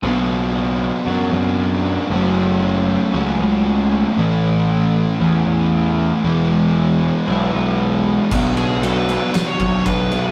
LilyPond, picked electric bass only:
\new Staff \with { instrumentName = "Picked electric bass" } { \clef bass \time 4/4 \key b \dorian \tempo 4 = 116 b,,2 fis,8 fis,4. | fis,,2 cis,8 cis,4. | a,,2 e,8 e,4. | e,,2 b,,8 b,,4. |
b,,2 r8 b,,8 b,,4 | }